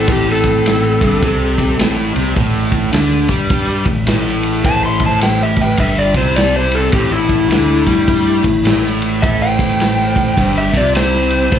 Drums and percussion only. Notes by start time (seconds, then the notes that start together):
0.08 kick, ride
0.44 kick, ride
0.66 snare, ride
1.01 kick, ride
1.23 kick, ride
1.58 kick, snare, ride
1.79 snare, ride
2.16 ride
2.36 kick, ride
2.72 kick, ride
2.93 snare, ride
3.28 kick, ride
3.50 kick, ride
3.85 kick, ride
4.07 snare, ride
4.27 snare
4.43 ride
4.64 kick, ride
5.00 kick, ride
5.21 snare, ride
5.56 kick, ride
5.77 kick, ride
6.14 kick, ride
6.36 snare, ride
6.72 ride
6.92 kick, ride
7.29 kick, ride
7.51 snare, ride
7.87 kick, ride
8.08 kick, ride
8.44 kick, ride
8.65 snare, ride
8.86 snare
9.02 ride
9.23 kick, ride
9.59 kick, ride
9.80 snare, ride
10.16 kick, ride
10.37 kick, ride
10.74 kick, snare, ride
10.95 snare, ride
11.14 snare
11.30 ride
11.52 kick, ride